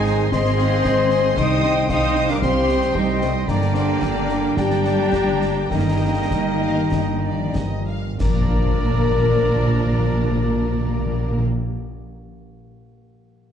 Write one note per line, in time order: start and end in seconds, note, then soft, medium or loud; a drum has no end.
0.00 0.27 G#1 medium
0.00 1.40 G#2 medium
0.00 0.31 D#3 medium
0.00 0.32 D#3 medium
0.00 0.15 G#3 medium
0.00 0.29 G#3 loud
0.00 0.31 C4 medium
0.00 2.07 C4 medium
0.00 0.29 D#4 loud
0.00 0.29 G#4 loud
0.00 0.29 D#5 medium
0.00 0.29 G#5 loud
0.00 0.29 C6 medium
0.04 0.31 C5 medium
0.04 0.33 D#5 medium
0.04 0.33 D#6 medium
0.04 snare medium
0.16 0.49 G#3 medium
0.31 0.79 G#1 medium
0.31 1.36 D#3 medium
0.31 1.02 D#3 medium
0.31 1.36 C4 medium
0.31 1.38 C4 loud
0.31 1.36 G#4 loud
0.31 0.57 C5 medium
0.31 1.36 C5 loud
0.31 0.59 D#5 medium
0.31 1.39 D#5 medium
0.31 0.57 C6 medium
0.31 1.36 C6 loud
0.31 1.36 C6 medium
0.31 concert bass drum medium
0.31 snare medium
0.45 snare medium
0.51 0.85 G#3 medium
0.57 0.85 D#5 medium
0.57 0.85 F5 medium
0.57 0.86 D#6 medium
0.57 snare medium
0.68 0.98 A#3 medium
0.84 1.32 G#1 loud
0.84 1.20 G#3 medium
0.84 1.12 C5 medium
0.84 1.11 D#5 medium
0.84 1.12 C6 medium
0.84 concert bass drum medium
0.84 snare medium
1.03 1.40 D#3 medium
1.09 1.38 D#5 medium
1.09 1.36 G#5 loud
1.09 1.38 D#6 medium
1.09 snare medium
1.21 1.40 G#3 medium
1.37 1.84 C2 loud
1.37 3.50 C3 medium
1.37 1.89 G3 medium
1.37 1.89 C4 medium
1.37 1.90 D#4 loud
1.37 1.89 C5 loud
1.37 1.63 C5 medium
1.37 1.89 D#5 loud
1.37 1.89 G5 loud
1.37 1.90 G5 medium
1.37 1.89 C6 medium
1.37 1.63 C6 medium
1.37 1.89 D#6 loud
1.37 concert bass drum medium
1.37 snare medium
1.56 1.89 G3 medium
1.63 1.91 D#5 medium
1.63 1.91 D#6 medium
1.63 snare medium
1.73 2.03 A3 medium
1.89 2.37 C2 loud
1.89 2.41 G3 medium
1.89 2.24 G3 medium
1.89 2.41 C4 medium
1.89 2.29 D#4 loud
1.89 2.29 C5 loud
1.89 2.17 C5 medium
1.89 2.29 D#5 loud
1.89 2.66 F5 loud
1.89 2.42 G5 medium
1.89 2.41 C6 medium
1.89 2.17 C6 medium
1.89 2.29 D#6 loud
1.89 concert bass drum medium
1.89 snare medium
2.16 2.43 D#5 medium
2.16 2.43 D#6 medium
2.16 snare medium
2.26 2.58 G3 medium
2.26 snare medium
2.30 2.35 D4 loud
2.30 2.43 A#4 loud
2.30 2.43 D5 loud
2.30 2.43 D6 loud
2.42 2.90 C2 medium
2.42 2.94 G3 medium
2.42 3.12 C4 medium
2.42 2.94 C4 loud
2.42 2.94 C4 medium
2.42 2.94 G4 loud
2.42 2.94 C5 loud
2.42 2.67 C5 medium
2.42 2.94 G5 medium
2.42 2.93 C6 medium
2.42 2.94 C6 loud
2.42 2.67 C6 medium
2.42 concert bass drum medium
2.42 snare medium
2.59 2.94 G3 medium
2.69 2.95 D#5 medium
2.69 2.95 D#6 medium
2.69 snare medium
2.77 3.07 A3 medium
2.82 snare medium
2.94 3.42 C2 medium
2.94 3.29 G3 medium
2.94 3.47 G3 medium
2.94 3.04 G3 medium
2.94 3.47 C4 medium
2.94 3.21 D#4 loud
2.94 3.22 G4 loud
2.94 3.21 C5 medium
2.94 3.47 D#5 medium
2.94 3.21 G5 medium
2.94 3.47 G5 medium
2.94 3.51 C6 medium
2.94 3.21 C6 medium
2.94 concert bass drum medium
3.13 3.50 C4 medium
3.21 3.30 C3 medium
3.21 3.29 A3 medium
3.21 3.48 C4 loud
3.21 3.47 C5 medium
3.21 3.48 D#5 medium
3.21 3.48 D#6 medium
3.21 snare medium
3.30 3.65 G3 medium
3.47 3.96 G1 medium
3.47 5.70 G2 medium
3.47 4.55 D3 loud
3.47 4.55 G3 medium
3.47 4.55 A#3 medium
3.47 4.55 A#3 loud
3.47 4.55 D4 loud
3.47 3.72 D5 medium
3.47 4.55 D5 loud
3.47 3.75 D5 medium
3.47 4.55 G5 medium
3.47 3.73 A#5 medium
3.47 4.57 A#5 medium
3.47 concert bass drum medium
3.47 snare medium
3.62 snare medium
3.66 4.00 G3 medium
3.74 4.01 C5 medium
3.74 4.02 G5 medium
3.74 4.02 D6 medium
3.74 snare medium
3.84 4.15 A3 medium
4.02 4.51 G1 medium
4.02 4.37 G3 medium
4.02 4.57 A#4 medium
4.02 4.30 D5 medium
4.02 4.30 A#5 medium
4.02 concert bass drum medium
4.02 snare medium
4.20 4.55 D3 medium
4.29 4.57 G5 medium
4.29 4.57 D6 medium
4.29 snare medium
4.38 4.74 G3 medium
4.57 5.07 G1 medium
4.57 5.31 D3 medium
4.57 5.71 G3 medium
4.57 5.69 G3 medium
4.57 5.69 A#3 medium
4.57 5.71 D4 loud
4.57 5.71 G4 loud
4.57 4.83 D5 medium
4.57 5.71 D5 medium
4.57 5.69 G5 medium
4.57 5.54 G5 medium
4.57 4.83 A#5 medium
4.57 5.69 A#5 medium
4.57 concert bass drum medium
4.57 snare medium
4.70 snare medium
4.75 5.12 G3 medium
4.85 5.13 G5 medium
4.85 5.13 D6 medium
4.85 snare medium
4.94 5.27 A3 medium
5.13 5.64 G1 medium
5.13 5.50 G3 medium
5.13 5.42 D5 medium
5.13 5.42 A#5 medium
5.13 concert bass drum medium
5.13 snare medium
5.32 5.73 D3 medium
5.41 5.71 G5 medium
5.41 5.71 D6 medium
5.41 snare medium
5.51 5.90 G3 medium
5.71 6.24 G1 medium
5.71 6.91 G2 medium
5.71 7.52 D#3 medium
5.71 7.84 G3 medium
5.71 7.84 A#3 medium
5.71 7.52 A#3 medium
5.71 7.51 D#4 loud
5.71 7.55 D#5 medium
5.71 5.99 D#5 medium
5.71 7.84 D#5 medium
5.71 7.84 G5 medium
5.71 7.84 A#5 medium
5.71 5.99 A#5 medium
5.71 concert bass drum medium
5.71 snare medium
5.91 6.30 G3 medium
6.00 6.29 G5 medium
6.00 6.31 D#6 medium
6.11 6.45 A3 medium
6.31 6.85 G1 medium
6.31 6.71 G3 medium
6.31 6.39 G5 medium
6.31 concert bass drum medium
6.31 snare medium
6.52 7.12 D#3 medium
6.60 6.91 F5 medium
6.72 7.55 G3 medium
6.90 7.48 G1 medium
6.90 8.24 G2 medium
6.90 7.22 D#5 medium
6.90 concert bass drum medium
6.90 snare medium
7.13 7.76 D#3 medium
7.22 7.54 D5 medium
7.35 7.71 F3 medium
7.55 8.13 G1 medium
7.55 7.98 G3 medium
7.55 7.88 D#5 medium
7.55 concert bass drum medium
7.55 snare medium
7.78 8.24 D#3 medium
7.87 8.20 F5 medium
7.99 8.24 G3 medium
8.20 11.42 A#1 medium
8.20 12.11 A#2 medium
8.20 8.27 A#2 medium
8.20 11.41 F3 medium
8.20 11.42 A#3 medium
8.20 11.41 D4 medium
8.20 11.43 D4 medium
8.20 11.42 A#4 medium
8.20 11.43 A#4 loud
8.20 11.42 D5 medium
8.20 11.42 A#5 medium
8.20 concert bass drum loud
8.20 snare medium
8.20 crash medium
8.27 8.34 A#2 medium
8.27 12.10 F3 medium
8.34 8.40 A#2 medium
8.34 11.56 A#3 medium
8.40 8.46 A#2 medium
8.40 11.63 D4 medium
8.46 8.53 A#2 loud
8.46 11.70 A#4 medium
8.53 8.59 A#2 medium
8.53 11.77 D5 medium
8.59 8.65 A#2 medium
8.66 8.72 A#2 medium
8.72 8.78 A#2 medium
8.78 8.85 A#2 medium
8.85 8.91 A#2 medium
8.91 8.97 A#2 medium
8.97 9.03 A#2 medium
9.03 9.10 A#2 medium
9.11 9.17 A#2 loud
9.17 9.24 A#2 medium
9.24 9.30 A#2 medium
9.30 9.36 A#2 medium
9.36 9.43 A#2 medium
9.43 9.49 A#2 medium
9.49 9.55 A#2 medium
9.55 9.61 A#2 medium
9.61 9.67 A#2 medium
9.67 9.74 A#2 medium
9.74 9.80 A#2 medium
9.80 9.86 A#2 medium
9.86 9.92 A#2 medium
9.92 9.98 A#2 medium
9.98 10.05 A#2 medium
10.05 10.11 A#2 medium
10.12 10.18 A#2 loud
10.18 10.24 A#2 medium
10.24 10.30 A#2 loud
10.30 10.36 A#2 medium
10.36 10.42 A#2 loud
10.43 10.48 A#2 medium
10.48 10.55 A#2 medium
10.55 10.61 A#2 medium
10.61 10.67 A#2 loud
10.67 10.74 A#2 medium
10.74 10.80 A#2 medium
10.80 10.87 A#2 medium
10.87 10.93 A#2 medium
10.93 10.99 A#2 medium
11.00 11.06 A#2 medium
11.06 11.12 A#2 medium
11.12 11.19 A#2 medium
11.19 11.25 A#2 medium
11.25 11.31 A#2 medium
11.31 11.38 A#2 medium
11.38 11.44 A#2 medium